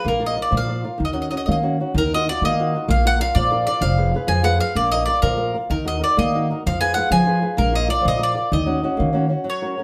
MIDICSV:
0, 0, Header, 1, 4, 480
1, 0, Start_track
1, 0, Key_signature, -6, "minor"
1, 0, Tempo, 314136
1, 81, Time_signature, 6, 3, 24, 8
1, 15031, End_track
2, 0, Start_track
2, 0, Title_t, "Mandolin"
2, 0, Program_c, 0, 25
2, 123, Note_on_c, 0, 70, 71
2, 335, Note_off_c, 0, 70, 0
2, 404, Note_on_c, 0, 75, 83
2, 588, Note_off_c, 0, 75, 0
2, 645, Note_on_c, 0, 74, 80
2, 827, Note_off_c, 0, 74, 0
2, 874, Note_on_c, 0, 77, 80
2, 1511, Note_off_c, 0, 77, 0
2, 1601, Note_on_c, 0, 75, 65
2, 1676, Note_off_c, 0, 75, 0
2, 1730, Note_on_c, 0, 75, 42
2, 1800, Note_off_c, 0, 75, 0
2, 1861, Note_on_c, 0, 75, 56
2, 1920, Note_off_c, 0, 75, 0
2, 1997, Note_on_c, 0, 75, 57
2, 2044, Note_off_c, 0, 75, 0
2, 2095, Note_on_c, 0, 75, 63
2, 2149, Note_off_c, 0, 75, 0
2, 2229, Note_on_c, 0, 75, 52
2, 2273, Note_off_c, 0, 75, 0
2, 2315, Note_on_c, 0, 75, 60
2, 2377, Note_off_c, 0, 75, 0
2, 3023, Note_on_c, 0, 70, 89
2, 3257, Note_off_c, 0, 70, 0
2, 3276, Note_on_c, 0, 75, 94
2, 3493, Note_off_c, 0, 75, 0
2, 3502, Note_on_c, 0, 74, 96
2, 3702, Note_off_c, 0, 74, 0
2, 3743, Note_on_c, 0, 75, 88
2, 4390, Note_off_c, 0, 75, 0
2, 4438, Note_on_c, 0, 77, 88
2, 4681, Note_off_c, 0, 77, 0
2, 4687, Note_on_c, 0, 78, 111
2, 4898, Note_off_c, 0, 78, 0
2, 4904, Note_on_c, 0, 77, 100
2, 5115, Note_on_c, 0, 74, 98
2, 5118, Note_off_c, 0, 77, 0
2, 5568, Note_off_c, 0, 74, 0
2, 5603, Note_on_c, 0, 74, 91
2, 5822, Note_off_c, 0, 74, 0
2, 5831, Note_on_c, 0, 77, 107
2, 6535, Note_off_c, 0, 77, 0
2, 6542, Note_on_c, 0, 80, 95
2, 6777, Note_off_c, 0, 80, 0
2, 6785, Note_on_c, 0, 78, 98
2, 7009, Note_off_c, 0, 78, 0
2, 7035, Note_on_c, 0, 77, 99
2, 7274, Note_off_c, 0, 77, 0
2, 7280, Note_on_c, 0, 74, 88
2, 7504, Note_off_c, 0, 74, 0
2, 7511, Note_on_c, 0, 75, 101
2, 7719, Note_off_c, 0, 75, 0
2, 7725, Note_on_c, 0, 74, 94
2, 7972, Note_off_c, 0, 74, 0
2, 7978, Note_on_c, 0, 70, 86
2, 8491, Note_off_c, 0, 70, 0
2, 8718, Note_on_c, 0, 70, 77
2, 8948, Note_off_c, 0, 70, 0
2, 8979, Note_on_c, 0, 75, 91
2, 9214, Note_off_c, 0, 75, 0
2, 9223, Note_on_c, 0, 74, 84
2, 9431, Note_off_c, 0, 74, 0
2, 9454, Note_on_c, 0, 75, 90
2, 10116, Note_off_c, 0, 75, 0
2, 10188, Note_on_c, 0, 77, 93
2, 10393, Note_off_c, 0, 77, 0
2, 10400, Note_on_c, 0, 80, 103
2, 10599, Note_off_c, 0, 80, 0
2, 10605, Note_on_c, 0, 78, 98
2, 10839, Note_off_c, 0, 78, 0
2, 10875, Note_on_c, 0, 80, 106
2, 11543, Note_off_c, 0, 80, 0
2, 11585, Note_on_c, 0, 70, 81
2, 11821, Note_off_c, 0, 70, 0
2, 11848, Note_on_c, 0, 75, 94
2, 12067, Note_off_c, 0, 75, 0
2, 12073, Note_on_c, 0, 74, 100
2, 12292, Note_off_c, 0, 74, 0
2, 12344, Note_on_c, 0, 75, 88
2, 12559, Note_off_c, 0, 75, 0
2, 12580, Note_on_c, 0, 74, 82
2, 13031, Note_off_c, 0, 74, 0
2, 13037, Note_on_c, 0, 75, 77
2, 13945, Note_off_c, 0, 75, 0
2, 14511, Note_on_c, 0, 73, 77
2, 15031, Note_off_c, 0, 73, 0
2, 15031, End_track
3, 0, Start_track
3, 0, Title_t, "Nylon-string guitar"
3, 0, Program_c, 1, 24
3, 66, Note_on_c, 1, 58, 78
3, 298, Note_on_c, 1, 65, 42
3, 303, Note_on_c, 1, 70, 46
3, 311, Note_on_c, 1, 74, 52
3, 518, Note_off_c, 1, 65, 0
3, 518, Note_off_c, 1, 70, 0
3, 523, Note_off_c, 1, 74, 0
3, 533, Note_on_c, 1, 65, 45
3, 540, Note_on_c, 1, 70, 44
3, 543, Note_off_c, 1, 58, 0
3, 553, Note_on_c, 1, 74, 54
3, 775, Note_on_c, 1, 53, 73
3, 937, Note_off_c, 1, 65, 0
3, 937, Note_off_c, 1, 70, 0
3, 940, Note_off_c, 1, 74, 0
3, 1030, Note_on_c, 1, 65, 53
3, 1047, Note_on_c, 1, 70, 47
3, 1049, Note_on_c, 1, 74, 58
3, 1259, Note_off_c, 1, 53, 0
3, 1269, Note_off_c, 1, 74, 0
3, 1279, Note_off_c, 1, 65, 0
3, 1280, Note_off_c, 1, 70, 0
3, 1288, Note_on_c, 1, 74, 46
3, 1296, Note_on_c, 1, 65, 44
3, 1301, Note_on_c, 1, 70, 35
3, 1476, Note_off_c, 1, 74, 0
3, 1481, Note_off_c, 1, 65, 0
3, 1482, Note_off_c, 1, 70, 0
3, 1493, Note_on_c, 1, 51, 64
3, 1725, Note_on_c, 1, 61, 45
3, 1728, Note_on_c, 1, 63, 38
3, 1741, Note_on_c, 1, 66, 55
3, 1979, Note_off_c, 1, 51, 0
3, 1980, Note_off_c, 1, 63, 0
3, 1991, Note_off_c, 1, 61, 0
3, 1999, Note_on_c, 1, 63, 44
3, 2003, Note_off_c, 1, 66, 0
3, 2010, Note_on_c, 1, 61, 43
3, 2021, Note_on_c, 1, 66, 53
3, 2251, Note_on_c, 1, 58, 64
3, 2394, Note_off_c, 1, 63, 0
3, 2400, Note_off_c, 1, 61, 0
3, 2407, Note_off_c, 1, 66, 0
3, 2488, Note_on_c, 1, 61, 43
3, 2495, Note_on_c, 1, 66, 56
3, 2500, Note_on_c, 1, 63, 45
3, 2723, Note_off_c, 1, 58, 0
3, 2733, Note_off_c, 1, 63, 0
3, 2742, Note_off_c, 1, 66, 0
3, 2744, Note_off_c, 1, 61, 0
3, 2751, Note_on_c, 1, 63, 35
3, 2760, Note_on_c, 1, 61, 36
3, 2763, Note_on_c, 1, 66, 42
3, 2935, Note_off_c, 1, 63, 0
3, 2940, Note_off_c, 1, 66, 0
3, 2941, Note_off_c, 1, 61, 0
3, 2985, Note_on_c, 1, 51, 81
3, 3258, Note_on_c, 1, 63, 55
3, 3267, Note_on_c, 1, 65, 49
3, 3278, Note_on_c, 1, 66, 52
3, 3453, Note_off_c, 1, 51, 0
3, 3467, Note_off_c, 1, 63, 0
3, 3473, Note_off_c, 1, 65, 0
3, 3473, Note_off_c, 1, 66, 0
3, 3482, Note_on_c, 1, 63, 53
3, 3493, Note_on_c, 1, 66, 61
3, 3498, Note_on_c, 1, 65, 46
3, 3726, Note_on_c, 1, 58, 78
3, 3864, Note_off_c, 1, 63, 0
3, 3867, Note_off_c, 1, 65, 0
3, 3868, Note_off_c, 1, 66, 0
3, 3969, Note_on_c, 1, 65, 46
3, 3972, Note_on_c, 1, 63, 57
3, 3976, Note_on_c, 1, 66, 66
3, 4180, Note_off_c, 1, 63, 0
3, 4182, Note_off_c, 1, 58, 0
3, 4189, Note_off_c, 1, 65, 0
3, 4198, Note_on_c, 1, 63, 46
3, 4199, Note_off_c, 1, 66, 0
3, 4207, Note_on_c, 1, 65, 41
3, 4218, Note_on_c, 1, 66, 46
3, 4379, Note_off_c, 1, 63, 0
3, 4384, Note_off_c, 1, 65, 0
3, 4390, Note_off_c, 1, 66, 0
3, 4403, Note_on_c, 1, 58, 79
3, 4658, Note_on_c, 1, 65, 53
3, 4672, Note_on_c, 1, 70, 47
3, 4678, Note_on_c, 1, 74, 52
3, 4869, Note_off_c, 1, 70, 0
3, 4873, Note_off_c, 1, 65, 0
3, 4877, Note_off_c, 1, 58, 0
3, 4889, Note_on_c, 1, 70, 47
3, 4891, Note_on_c, 1, 65, 62
3, 4893, Note_off_c, 1, 74, 0
3, 4912, Note_on_c, 1, 74, 64
3, 5152, Note_on_c, 1, 53, 77
3, 5276, Note_off_c, 1, 70, 0
3, 5278, Note_off_c, 1, 65, 0
3, 5291, Note_off_c, 1, 74, 0
3, 5360, Note_on_c, 1, 65, 62
3, 5368, Note_on_c, 1, 70, 61
3, 5378, Note_on_c, 1, 74, 72
3, 5591, Note_off_c, 1, 70, 0
3, 5601, Note_off_c, 1, 65, 0
3, 5605, Note_off_c, 1, 74, 0
3, 5607, Note_off_c, 1, 53, 0
3, 5609, Note_on_c, 1, 70, 44
3, 5617, Note_on_c, 1, 65, 50
3, 5627, Note_on_c, 1, 74, 51
3, 5796, Note_off_c, 1, 70, 0
3, 5802, Note_off_c, 1, 65, 0
3, 5804, Note_off_c, 1, 74, 0
3, 5841, Note_on_c, 1, 53, 83
3, 6077, Note_on_c, 1, 65, 56
3, 6083, Note_on_c, 1, 68, 47
3, 6085, Note_on_c, 1, 71, 56
3, 6305, Note_off_c, 1, 65, 0
3, 6306, Note_off_c, 1, 53, 0
3, 6315, Note_off_c, 1, 68, 0
3, 6323, Note_on_c, 1, 65, 53
3, 6334, Note_on_c, 1, 68, 52
3, 6338, Note_off_c, 1, 71, 0
3, 6356, Note_on_c, 1, 71, 66
3, 6526, Note_on_c, 1, 53, 69
3, 6706, Note_off_c, 1, 65, 0
3, 6712, Note_off_c, 1, 68, 0
3, 6725, Note_off_c, 1, 71, 0
3, 6769, Note_on_c, 1, 65, 63
3, 6782, Note_on_c, 1, 68, 57
3, 6789, Note_on_c, 1, 71, 70
3, 6988, Note_off_c, 1, 65, 0
3, 7001, Note_off_c, 1, 68, 0
3, 7004, Note_off_c, 1, 53, 0
3, 7006, Note_on_c, 1, 65, 41
3, 7013, Note_off_c, 1, 71, 0
3, 7019, Note_on_c, 1, 68, 42
3, 7031, Note_on_c, 1, 71, 46
3, 7203, Note_off_c, 1, 65, 0
3, 7211, Note_off_c, 1, 68, 0
3, 7218, Note_off_c, 1, 71, 0
3, 7263, Note_on_c, 1, 58, 79
3, 7523, Note_on_c, 1, 70, 44
3, 7533, Note_on_c, 1, 65, 44
3, 7543, Note_on_c, 1, 74, 58
3, 7734, Note_off_c, 1, 58, 0
3, 7736, Note_off_c, 1, 70, 0
3, 7744, Note_off_c, 1, 65, 0
3, 7749, Note_off_c, 1, 74, 0
3, 7754, Note_on_c, 1, 70, 50
3, 7761, Note_on_c, 1, 65, 56
3, 7771, Note_on_c, 1, 74, 51
3, 7986, Note_on_c, 1, 53, 74
3, 8143, Note_off_c, 1, 70, 0
3, 8148, Note_off_c, 1, 65, 0
3, 8151, Note_off_c, 1, 74, 0
3, 8200, Note_on_c, 1, 65, 53
3, 8208, Note_on_c, 1, 74, 62
3, 8215, Note_on_c, 1, 70, 50
3, 8451, Note_off_c, 1, 65, 0
3, 8454, Note_off_c, 1, 70, 0
3, 8460, Note_off_c, 1, 53, 0
3, 8468, Note_on_c, 1, 65, 41
3, 8469, Note_off_c, 1, 74, 0
3, 8475, Note_on_c, 1, 70, 36
3, 8487, Note_on_c, 1, 74, 41
3, 8661, Note_off_c, 1, 65, 0
3, 8662, Note_off_c, 1, 70, 0
3, 8672, Note_off_c, 1, 74, 0
3, 8704, Note_on_c, 1, 51, 83
3, 8934, Note_on_c, 1, 63, 45
3, 8942, Note_on_c, 1, 70, 53
3, 8950, Note_on_c, 1, 66, 44
3, 9140, Note_off_c, 1, 63, 0
3, 9158, Note_on_c, 1, 63, 50
3, 9165, Note_off_c, 1, 66, 0
3, 9165, Note_off_c, 1, 70, 0
3, 9180, Note_off_c, 1, 51, 0
3, 9182, Note_on_c, 1, 66, 46
3, 9185, Note_on_c, 1, 70, 55
3, 9428, Note_on_c, 1, 58, 85
3, 9564, Note_off_c, 1, 63, 0
3, 9579, Note_off_c, 1, 66, 0
3, 9579, Note_off_c, 1, 70, 0
3, 9700, Note_on_c, 1, 63, 64
3, 9709, Note_on_c, 1, 66, 46
3, 9714, Note_on_c, 1, 70, 64
3, 9903, Note_off_c, 1, 58, 0
3, 9921, Note_off_c, 1, 66, 0
3, 9922, Note_off_c, 1, 63, 0
3, 9934, Note_off_c, 1, 70, 0
3, 9939, Note_on_c, 1, 63, 49
3, 9942, Note_on_c, 1, 66, 35
3, 9952, Note_on_c, 1, 70, 48
3, 10120, Note_off_c, 1, 63, 0
3, 10120, Note_off_c, 1, 66, 0
3, 10127, Note_off_c, 1, 70, 0
3, 10181, Note_on_c, 1, 53, 81
3, 10392, Note_on_c, 1, 68, 44
3, 10402, Note_on_c, 1, 65, 50
3, 10405, Note_on_c, 1, 71, 57
3, 10609, Note_off_c, 1, 65, 0
3, 10619, Note_off_c, 1, 71, 0
3, 10624, Note_off_c, 1, 68, 0
3, 10627, Note_on_c, 1, 65, 58
3, 10638, Note_off_c, 1, 53, 0
3, 10641, Note_on_c, 1, 68, 49
3, 10641, Note_on_c, 1, 71, 59
3, 10874, Note_on_c, 1, 53, 73
3, 11019, Note_off_c, 1, 65, 0
3, 11025, Note_off_c, 1, 71, 0
3, 11028, Note_off_c, 1, 68, 0
3, 11099, Note_on_c, 1, 65, 59
3, 11108, Note_on_c, 1, 71, 57
3, 11125, Note_on_c, 1, 68, 56
3, 11317, Note_off_c, 1, 68, 0
3, 11322, Note_off_c, 1, 65, 0
3, 11322, Note_off_c, 1, 71, 0
3, 11337, Note_on_c, 1, 68, 44
3, 11338, Note_on_c, 1, 65, 44
3, 11344, Note_off_c, 1, 53, 0
3, 11346, Note_on_c, 1, 71, 49
3, 11532, Note_off_c, 1, 68, 0
3, 11535, Note_off_c, 1, 65, 0
3, 11535, Note_off_c, 1, 71, 0
3, 11567, Note_on_c, 1, 58, 89
3, 11798, Note_on_c, 1, 65, 55
3, 11817, Note_on_c, 1, 70, 44
3, 11822, Note_on_c, 1, 74, 58
3, 12027, Note_off_c, 1, 65, 0
3, 12029, Note_off_c, 1, 70, 0
3, 12034, Note_off_c, 1, 74, 0
3, 12044, Note_on_c, 1, 65, 55
3, 12049, Note_off_c, 1, 58, 0
3, 12051, Note_on_c, 1, 70, 49
3, 12053, Note_on_c, 1, 74, 71
3, 12242, Note_on_c, 1, 53, 81
3, 12443, Note_off_c, 1, 65, 0
3, 12444, Note_off_c, 1, 70, 0
3, 12448, Note_off_c, 1, 74, 0
3, 12508, Note_on_c, 1, 65, 58
3, 12516, Note_on_c, 1, 70, 60
3, 12517, Note_on_c, 1, 74, 64
3, 12730, Note_off_c, 1, 65, 0
3, 12742, Note_off_c, 1, 53, 0
3, 12743, Note_off_c, 1, 74, 0
3, 12746, Note_off_c, 1, 70, 0
3, 12748, Note_on_c, 1, 65, 47
3, 12763, Note_on_c, 1, 70, 36
3, 12767, Note_on_c, 1, 74, 43
3, 12952, Note_off_c, 1, 65, 0
3, 12960, Note_off_c, 1, 74, 0
3, 12962, Note_off_c, 1, 70, 0
3, 13017, Note_on_c, 1, 51, 80
3, 13233, Note_on_c, 1, 61, 51
3, 13233, Note_on_c, 1, 63, 44
3, 13247, Note_on_c, 1, 66, 55
3, 13479, Note_off_c, 1, 61, 0
3, 13487, Note_off_c, 1, 63, 0
3, 13490, Note_off_c, 1, 51, 0
3, 13493, Note_off_c, 1, 66, 0
3, 13497, Note_on_c, 1, 61, 56
3, 13504, Note_on_c, 1, 63, 49
3, 13513, Note_on_c, 1, 66, 62
3, 13705, Note_on_c, 1, 58, 67
3, 13895, Note_off_c, 1, 61, 0
3, 13900, Note_off_c, 1, 63, 0
3, 13903, Note_off_c, 1, 66, 0
3, 13947, Note_on_c, 1, 61, 53
3, 13960, Note_on_c, 1, 63, 51
3, 13974, Note_on_c, 1, 66, 60
3, 14173, Note_off_c, 1, 61, 0
3, 14185, Note_off_c, 1, 63, 0
3, 14191, Note_on_c, 1, 61, 42
3, 14201, Note_off_c, 1, 66, 0
3, 14202, Note_off_c, 1, 58, 0
3, 14204, Note_on_c, 1, 63, 40
3, 14219, Note_on_c, 1, 66, 41
3, 14400, Note_off_c, 1, 61, 0
3, 14408, Note_off_c, 1, 63, 0
3, 14417, Note_off_c, 1, 66, 0
3, 14427, Note_on_c, 1, 54, 73
3, 14694, Note_on_c, 1, 61, 44
3, 14702, Note_on_c, 1, 70, 45
3, 14703, Note_on_c, 1, 66, 44
3, 14919, Note_off_c, 1, 61, 0
3, 14925, Note_off_c, 1, 54, 0
3, 14929, Note_off_c, 1, 66, 0
3, 14938, Note_on_c, 1, 61, 48
3, 14945, Note_off_c, 1, 70, 0
3, 14948, Note_on_c, 1, 66, 41
3, 14963, Note_on_c, 1, 70, 49
3, 15031, Note_off_c, 1, 61, 0
3, 15031, Note_off_c, 1, 66, 0
3, 15031, Note_off_c, 1, 70, 0
3, 15031, End_track
4, 0, Start_track
4, 0, Title_t, "Upright bass"
4, 0, Program_c, 2, 32
4, 84, Note_on_c, 2, 34, 84
4, 551, Note_off_c, 2, 34, 0
4, 794, Note_on_c, 2, 46, 92
4, 1265, Note_off_c, 2, 46, 0
4, 1527, Note_on_c, 2, 39, 81
4, 1996, Note_off_c, 2, 39, 0
4, 2266, Note_on_c, 2, 51, 83
4, 2732, Note_off_c, 2, 51, 0
4, 2971, Note_on_c, 2, 39, 98
4, 3442, Note_off_c, 2, 39, 0
4, 3692, Note_on_c, 2, 51, 76
4, 4160, Note_off_c, 2, 51, 0
4, 4409, Note_on_c, 2, 34, 101
4, 4876, Note_off_c, 2, 34, 0
4, 5126, Note_on_c, 2, 46, 91
4, 5590, Note_off_c, 2, 46, 0
4, 5822, Note_on_c, 2, 29, 94
4, 6291, Note_off_c, 2, 29, 0
4, 6544, Note_on_c, 2, 41, 92
4, 7010, Note_off_c, 2, 41, 0
4, 7264, Note_on_c, 2, 34, 88
4, 7733, Note_off_c, 2, 34, 0
4, 7988, Note_on_c, 2, 46, 82
4, 8459, Note_off_c, 2, 46, 0
4, 8711, Note_on_c, 2, 39, 91
4, 9181, Note_off_c, 2, 39, 0
4, 9442, Note_on_c, 2, 51, 84
4, 9908, Note_off_c, 2, 51, 0
4, 10182, Note_on_c, 2, 41, 94
4, 10640, Note_off_c, 2, 41, 0
4, 10861, Note_on_c, 2, 53, 95
4, 11333, Note_off_c, 2, 53, 0
4, 11585, Note_on_c, 2, 34, 99
4, 12054, Note_off_c, 2, 34, 0
4, 12305, Note_on_c, 2, 46, 93
4, 12771, Note_off_c, 2, 46, 0
4, 13015, Note_on_c, 2, 39, 92
4, 13487, Note_off_c, 2, 39, 0
4, 13748, Note_on_c, 2, 51, 87
4, 14222, Note_off_c, 2, 51, 0
4, 15031, End_track
0, 0, End_of_file